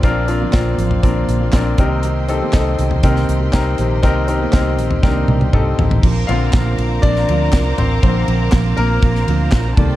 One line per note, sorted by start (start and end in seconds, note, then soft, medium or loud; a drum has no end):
0.00 0.45 A#1 loud
0.00 0.04 A#2 medium
0.00 0.75 A#2 medium
0.00 0.41 F3 medium
0.00 6.00 A#3 medium
0.00 0.03 C4 medium
0.00 0.26 C4 loud
0.00 0.04 D4 medium
0.00 0.27 D4 medium
0.00 0.04 F4 medium
0.00 1.79 G4 medium
0.00 0.04 A#4 loud
0.00 1.75 D5 medium
0.00 1.75 F5 medium
0.00 6.00 C6 medium
0.00 kick loud
0.00 closed hi-hat medium
0.04 0.40 A#3 medium
0.04 0.40 C4 medium
0.04 0.27 F4 medium
0.04 0.39 F4 medium
0.04 0.28 A#4 loud
0.28 0.51 C4 medium
0.28 0.51 D4 medium
0.28 0.52 F4 medium
0.28 0.52 A#4 medium
0.28 closed hi-hat medium
0.41 0.79 A#2 medium
0.41 0.79 D3 medium
0.41 0.77 F3 medium
0.41 0.78 A#3 medium
0.41 0.79 C4 medium
0.41 0.78 F4 medium
0.53 0.74 A#1 medium
0.53 1.01 C4 medium
0.53 1.01 D4 medium
0.53 1.01 F4 medium
0.53 1.01 A#4 medium
0.53 kick loud
0.53 snare loud
0.53 clap medium
0.53 closed hi-hat medium
0.78 0.99 A1 medium
0.78 1.02 F3 medium
0.78 1.02 A#3 medium
0.78 1.03 C4 medium
0.78 1.03 F4 medium
0.78 closed hi-hat medium
0.91 floor tom medium
1.02 1.24 A#1 medium
1.02 1.41 A#2 medium
1.02 1.41 D3 medium
1.02 1.41 F3 medium
1.02 1.41 A#3 medium
1.02 1.51 C4 medium
1.02 1.40 C4 medium
1.02 1.51 D4 medium
1.02 1.51 F4 medium
1.02 1.39 F4 medium
1.02 1.51 A#4 medium
1.02 kick loud
1.02 closed hi-hat medium
1.28 1.49 A#1 medium
1.28 closed hi-hat medium
1.40 1.77 F3 soft
1.40 1.77 A#3 soft
1.40 1.79 C4 soft
1.40 1.78 F4 soft
1.52 1.74 A#1 medium
1.52 1.77 C4 medium
1.52 1.79 D4 medium
1.52 1.79 F4 medium
1.52 1.78 A#4 medium
1.52 kick medium
1.52 snare loud
1.52 clap medium
1.52 closed hi-hat medium
1.78 2.40 C2 medium
1.78 2.50 C3 medium
1.78 2.02 D#3 medium
1.78 2.03 A#3 medium
1.78 2.26 C4 medium
1.78 2.03 C4 medium
1.78 2.26 D#4 medium
1.78 2.26 G4 medium
1.78 2.04 G4 medium
1.78 2.27 A#4 medium
1.78 6.00 D#5 medium
1.78 5.99 G5 medium
1.78 kick medium
1.78 closed hi-hat medium
2.03 2.41 D#3 medium
2.03 2.41 A#3 medium
2.03 2.40 C4 medium
2.03 2.40 G4 medium
2.03 closed hi-hat medium
2.28 2.52 C4 medium
2.28 2.52 D#4 medium
2.28 2.52 G4 medium
2.28 2.53 A4 medium
2.28 closed hi-hat medium
2.41 2.79 C3 medium
2.41 2.77 D#3 medium
2.41 2.78 A#3 medium
2.41 2.79 C4 medium
2.41 2.78 G4 medium
2.53 2.74 C2 medium
2.53 3.01 C4 medium
2.53 3.01 D#4 medium
2.53 3.01 G4 medium
2.53 3.01 A4 medium
2.53 kick loud
2.53 snare loud
2.53 clap medium
2.53 closed hi-hat medium
2.78 2.99 C2 medium
2.78 3.03 D#3 medium
2.78 3.03 A#3 medium
2.78 3.04 C4 medium
2.78 3.04 G4 medium
2.78 closed hi-hat medium
2.91 floor tom medium
3.03 3.24 C2 loud
3.03 3.41 C3 medium
3.03 3.41 D#3 medium
3.03 3.42 A#3 medium
3.03 3.51 C4 medium
3.03 3.41 C4 medium
3.03 3.51 D#4 medium
3.03 3.51 G4 medium
3.03 3.39 G4 medium
3.03 3.51 A#4 medium
3.03 kick loud
3.03 closed hi-hat medium
3.16 snare soft
3.29 3.49 C2 medium
3.29 closed hi-hat medium
3.41 3.78 A#3 soft
3.41 3.79 C4 soft
3.41 3.78 G4 medium
3.53 3.74 C2 loud
3.53 4.01 C4 medium
3.53 4.01 D#4 medium
3.53 4.01 G4 medium
3.53 4.01 A#4 medium
3.53 kick medium
3.53 snare loud
3.53 clap medium
3.53 closed hi-hat medium
3.78 4.04 A#1 medium
3.78 4.49 C3 medium
3.78 4.01 D#3 medium
3.78 4.03 A#3 medium
3.78 4.04 C4 medium
3.78 4.04 G4 medium
3.78 closed hi-hat medium
4.02 4.45 C2 loud
4.02 4.40 D#3 medium
4.02 4.41 A#3 medium
4.02 4.26 C4 loud
4.02 4.40 C4 medium
4.02 4.27 D#4 medium
4.02 4.27 G4 medium
4.02 4.40 G4 medium
4.02 4.27 A#4 loud
4.02 kick loud
4.02 closed hi-hat medium
4.28 4.51 C4 medium
4.28 4.52 D#4 medium
4.28 4.52 G4 medium
4.28 4.52 A#4 medium
4.28 closed hi-hat medium
4.41 4.79 C3 medium
4.41 4.76 D#3 medium
4.41 4.78 A#3 medium
4.41 4.79 C4 medium
4.41 4.78 G4 medium
4.52 4.79 C2 loud
4.52 5.00 C4 medium
4.52 5.01 D#4 medium
4.52 5.01 G4 medium
4.52 5.01 A#4 medium
4.52 kick loud
4.52 snare loud
4.52 clap medium
4.52 closed hi-hat medium
4.78 4.99 A#1 medium
4.78 5.02 D#3 medium
4.78 5.03 A#3 medium
4.78 5.03 C4 medium
4.78 5.04 G4 medium
4.78 closed hi-hat medium
4.91 floor tom medium
5.03 5.24 C2 medium
5.03 5.41 C3 medium
5.03 5.41 D#3 medium
5.03 5.41 A#3 medium
5.03 5.50 C4 medium
5.03 5.41 C4 medium
5.03 5.09 D4 medium
5.03 5.51 G4 medium
5.03 5.40 G4 medium
5.03 5.51 A#4 medium
5.03 kick loud
5.03 snare medium
5.09 5.52 D#4 medium
5.28 5.49 C2 loud
5.28 high tom medium
5.41 5.77 A#3 soft
5.41 5.78 C4 soft
5.41 5.78 G4 medium
5.41 high tom medium
5.53 5.74 C2 loud
5.53 6.01 C4 medium
5.53 6.01 D#4 medium
5.53 6.01 G4 medium
5.53 6.01 A4 medium
5.53 kick medium
5.53 mid tom medium
5.78 5.99 A1 medium
5.78 6.02 D#3 medium
5.78 6.03 A#3 medium
5.78 6.02 C4 medium
5.78 6.04 G4 medium
5.78 floor tom loud
5.91 floor tom medium
6.02 6.24 A#1 loud
6.02 6.26 F3 medium
6.02 6.27 C4 medium
6.02 6.28 D4 medium
6.02 6.29 F4 medium
6.02 9.73 A#4 medium
6.02 9.96 C5 medium
6.02 9.74 F5 medium
6.02 9.73 A#5 medium
6.02 9.74 C6 medium
6.02 9.74 D6 medium
6.02 kick loud
6.02 crash loud
6.27 6.49 A#1 loud
6.27 6.61 D3 medium
6.27 6.52 F3 medium
6.27 6.62 A#3 medium
6.27 6.53 C4 medium
6.27 6.62 C4 medium
6.27 6.53 D4 medium
6.27 6.75 F4 medium
6.27 6.54 F4 medium
6.27 6.74 F5 loud
6.27 ride medium
6.53 6.74 A#1 loud
6.53 7.02 A#2 medium
6.53 7.03 F3 medium
6.53 7.04 C4 medium
6.53 7.04 D4 medium
6.53 7.04 F4 medium
6.53 kick loud
6.53 snare loud
6.53 clap medium
6.53 ride medium
6.78 6.99 A#1 loud
6.78 ride medium
7.02 7.24 A#1 loud
7.02 7.27 A#2 medium
7.02 7.28 F3 medium
7.02 7.28 C4 medium
7.02 7.74 D4 medium
7.02 7.29 D4 loud
7.02 7.29 F4 medium
7.02 7.80 D5 loud
7.02 kick loud
7.02 ride medium
7.16 snare soft
7.28 7.49 D2 medium
7.28 7.66 A#2 medium
7.28 7.66 F3 medium
7.28 7.66 C4 loud
7.28 7.66 D4 loud
7.28 7.64 F4 medium
7.28 ride medium
7.52 7.74 C2 loud
7.52 kick loud
7.52 snare loud
7.52 clap medium
7.52 ride medium
7.65 8.02 C4 soft
7.65 8.04 D4 medium
7.65 8.03 F4 medium
7.78 7.99 A1 medium
7.78 8.02 C4 medium
7.78 8.01 C5 medium
7.78 floor tom medium
7.78 ride medium
8.02 8.24 A#1 loud
8.02 8.36 D3 medium
8.02 8.26 F3 medium
8.02 8.36 A#3 soft
8.02 8.27 C4 medium
8.02 8.50 C4 medium
8.02 8.28 D4 medium
8.02 8.29 F4 medium
8.02 8.49 C5 medium
8.02 kick loud
8.02 ride medium
8.27 8.48 A#1 loud
8.27 8.52 F3 medium
8.27 8.53 C4 medium
8.27 8.53 D4 medium
8.27 8.54 F4 medium
8.27 ride medium
8.52 8.73 A#1 loud
8.52 9.01 A#2 medium
8.52 9.02 F3 medium
8.52 9.03 C4 medium
8.52 9.03 D4 medium
8.52 9.03 F4 medium
8.52 kick loud
8.52 snare loud
8.52 clap medium
8.52 ride medium
8.77 8.98 A#1 loud
8.77 9.74 A#3 medium
8.77 9.73 A#4 loud
8.77 ride medium
9.02 9.23 A#1 loud
9.02 9.26 A#2 medium
9.02 9.27 F3 medium
9.02 9.27 C4 medium
9.02 9.28 D4 medium
9.02 9.28 F4 medium
9.02 kick loud
9.02 ride medium
9.15 snare soft
9.27 9.48 D2 medium
9.27 9.65 A#2 medium
9.27 9.65 F3 medium
9.27 9.65 C4 medium
9.27 9.65 D4 loud
9.27 9.64 F4 medium
9.27 ride medium
9.52 9.73 A#1 medium
9.52 kick medium
9.52 snare loud
9.52 clap medium
9.52 ride medium
9.65 9.78 C4 soft
9.65 9.78 D4 medium
9.65 9.77 F4 medium
9.77 9.96 C2 loud
9.77 9.96 C3 medium
9.77 9.96 D#3 medium
9.77 9.96 G3 medium
9.77 9.96 A#3 soft
9.77 9.96 A#3 medium
9.77 9.96 D#4 medium
9.77 9.96 G4 medium
9.77 9.96 A4 medium
9.77 9.96 D5 medium
9.77 9.96 G5 medium
9.77 9.96 A5 medium
9.77 9.96 C6 medium
9.77 kick loud
9.77 floor tom medium
9.77 ride medium